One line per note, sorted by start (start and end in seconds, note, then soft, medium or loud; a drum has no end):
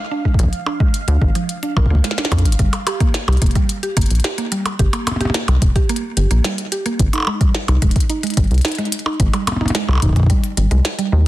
0.00 2.60 F5 medium
0.11 0.24 D4 medium
0.25 0.38 G#3 medium
0.25 kick soft
0.34 kick medium
0.39 0.49 A#1 medium
0.39 0.51 F3 medium
0.39 closed hi-hat medium
0.44 kick medium
0.53 closed hi-hat soft
0.66 0.80 D4 medium
0.66 percussion blips soft
0.80 0.93 G#3 loud
0.80 kick loud
0.94 closed hi-hat medium
1.08 1.17 D2 loud
1.08 1.20 D4 medium
1.08 closed hi-hat soft
1.22 1.31 G#1 medium
1.22 1.34 G#3 medium
1.22 kick loud
1.35 1.48 F3 medium
1.35 closed hi-hat medium
1.49 closed hi-hat medium
1.63 1.76 D4 medium
1.63 closed hi-hat soft
1.77 1.86 A#1 medium
1.77 1.84 A#4 loud
1.77 kick loud
1.77 percussion blips soft
1.86 kick medium
1.90 2.00 D2 medium
1.90 2.03 A#3 medium
1.95 kick medium
2.04 2.17 G#3 medium
2.04 snare medium
2.04 closed hi-hat medium
2.11 snare medium
2.18 2.30 D4 loud
2.18 snare medium
2.18 closed hi-hat soft
2.25 snare loud
2.32 2.47 F2 loud
2.32 2.44 D4 medium
2.32 kick loud
2.32 closed hi-hat medium
2.32 percussion blips medium
2.39 closed hi-hat medium
2.45 2.55 G#1 loud
2.45 closed hi-hat medium
2.52 closed hi-hat medium
2.59 2.69 G1 medium
2.59 2.71 G3 medium
2.59 kick medium
2.59 closed hi-hat medium
2.73 closed hi-hat soft
2.73 percussion blips medium
2.87 3.00 G4 medium
2.87 closed hi-hat loud
2.87 percussion blips medium
3.00 3.14 A#3 loud
3.00 kick medium
3.00 closed hi-hat soft
3.14 snare loud
3.14 closed hi-hat medium
3.28 3.38 C2 loud
3.28 3.40 G4 medium
3.28 closed hi-hat soft
3.28 percussion blips medium
3.33 closed hi-hat soft
3.37 closed hi-hat soft
3.42 3.51 F1 medium
3.42 3.54 A#3 medium
3.42 kick loud
3.42 closed hi-hat medium
3.46 closed hi-hat soft
3.51 closed hi-hat soft
3.55 3.68 G3 medium
3.55 kick medium
3.55 closed hi-hat soft
3.69 closed hi-hat medium
3.83 3.96 G4 medium
3.83 closed hi-hat soft
3.97 4.06 G1 medium
3.97 4.10 A#3 loud
3.97 kick loud
3.97 closed hi-hat loud
4.01 closed hi-hat medium
4.06 closed hi-hat medium
4.11 4.20 A#1 medium
4.11 closed hi-hat medium
4.15 closed hi-hat soft
4.20 closed hi-hat soft
4.24 4.37 G4 medium
4.24 snare loud
4.24 closed hi-hat medium
4.38 4.50 A#3 medium
4.38 closed hi-hat soft
4.52 4.64 G3 medium
4.52 closed hi-hat loud
4.66 closed hi-hat soft
4.66 percussion blips medium
4.79 4.89 G1 loud
4.79 4.92 G4 medium
4.79 kick medium
4.79 closed hi-hat medium
4.93 5.06 A#3 loud
4.93 closed hi-hat soft
4.93 percussion blips medium
5.07 closed hi-hat loud
5.07 percussion blips soft
5.07 percussion blips medium
5.11 percussion blips medium
5.16 percussion blips medium
5.21 5.33 G4 medium
5.21 closed hi-hat soft
5.21 percussion blips medium
5.25 percussion blips medium
5.30 percussion blips medium
5.34 5.47 A#3 medium
5.34 snare loud
5.34 closed hi-hat medium
5.48 5.58 C2 loud
5.48 5.60 G3 medium
5.48 closed hi-hat soft
5.48 percussion blips medium
5.62 5.72 F1 medium
5.62 kick loud
5.62 closed hi-hat medium
5.76 5.89 G4 medium
5.76 kick medium
5.76 closed hi-hat soft
5.89 6.03 A#3 loud
5.89 closed hi-hat medium
5.96 closed hi-hat soft
6.17 6.27 G1 medium
6.17 6.29 G4 medium
6.17 closed hi-hat loud
6.31 6.40 A#1 medium
6.31 6.43 A#3 medium
6.31 closed hi-hat soft
6.44 6.57 G3 medium
6.44 snare loud
6.44 closed hi-hat medium
6.58 closed hi-hat soft
6.72 6.85 G4 medium
6.72 closed hi-hat loud
6.86 6.99 A#3 loud
6.86 closed hi-hat soft
6.99 7.09 G#1 loud
6.99 kick medium
6.99 closed hi-hat medium
7.13 7.26 D#4 medium
7.13 closed hi-hat soft
7.13 percussion blips soft
7.15 percussion blips soft
7.18 percussion blips soft
7.20 percussion blips soft
7.22 percussion blips soft
7.25 percussion blips soft
7.27 7.39 G#3 medium
7.27 percussion blips medium
7.41 7.53 G3 medium
7.41 kick medium
7.41 closed hi-hat soft
7.55 snare loud
7.68 7.78 C2 loud
7.68 7.81 D#4 medium
7.68 closed hi-hat soft
7.68 percussion blips soft
7.82 7.92 D#1 medium
7.82 7.95 G#3 loud
7.82 kick loud
7.82 closed hi-hat medium
7.91 closed hi-hat medium
7.96 kick medium
7.96 closed hi-hat soft
8.00 closed hi-hat medium
8.10 8.22 D#4 medium
8.10 closed hi-hat medium
8.23 8.36 G#3 medium
8.23 closed hi-hat soft
8.27 closed hi-hat soft
8.30 closed hi-hat soft
8.34 8.49 G3 medium
8.34 closed hi-hat soft
8.37 8.47 G#1 medium
8.37 kick loud
8.37 closed hi-hat loud
8.41 closed hi-hat soft
8.44 closed hi-hat soft
8.47 closed hi-hat soft
8.51 8.61 C2 medium
8.51 closed hi-hat soft
8.54 closed hi-hat soft
8.58 closed hi-hat soft
8.61 8.78 D#4 medium
8.61 snare loud
8.61 closed hi-hat soft
8.65 closed hi-hat medium
8.68 closed hi-hat soft
8.72 closed hi-hat soft
8.75 8.92 G#3 loud
8.75 closed hi-hat soft
8.78 closed hi-hat soft
8.85 closed hi-hat soft
8.92 closed hi-hat loud
8.99 closed hi-hat soft
9.06 9.18 D#4 medium
9.06 percussion blips soft
9.20 9.29 G#1 loud
9.20 9.32 G#3 medium
9.20 kick medium
9.20 closed hi-hat medium
9.33 9.46 G3 medium
9.33 closed hi-hat soft
9.33 percussion blips soft
9.47 closed hi-hat loud
9.47 percussion blips soft
9.47 percussion blips medium
9.52 percussion blips soft
9.56 percussion blips medium
9.61 9.74 D#4 medium
9.61 percussion blips medium
9.66 closed hi-hat soft
9.66 percussion blips medium
9.70 percussion blips medium
9.75 9.88 G#3 loud
9.75 snare loud
9.75 closed hi-hat medium
9.89 9.98 C2 loud
9.89 percussion blips soft
9.91 percussion blips soft
9.93 percussion blips soft
9.95 percussion blips soft
9.98 percussion blips soft
10.00 10.12 D#1 medium
10.00 10.15 D#4 medium
10.00 kick medium
10.00 closed hi-hat medium
10.00 percussion blips soft
10.06 kick medium
10.09 kick medium
10.13 10.28 G#3 medium
10.13 kick medium
10.16 kick medium
10.16 closed hi-hat soft
10.20 kick medium
10.23 kick loud
10.26 10.42 G3 medium
10.26 kick loud
10.26 closed hi-hat medium
10.30 kick medium
10.44 closed hi-hat soft
10.57 10.67 G#1 medium
10.57 10.70 G3 medium
10.57 closed hi-hat medium
10.71 10.81 C2 medium
10.71 10.78 G#3 loud
10.71 closed hi-hat soft
10.85 snare loud
10.85 closed hi-hat medium
10.99 11.12 G3 medium
10.99 closed hi-hat soft
11.12 11.28 D#2 loud
11.12 11.25 G#3 medium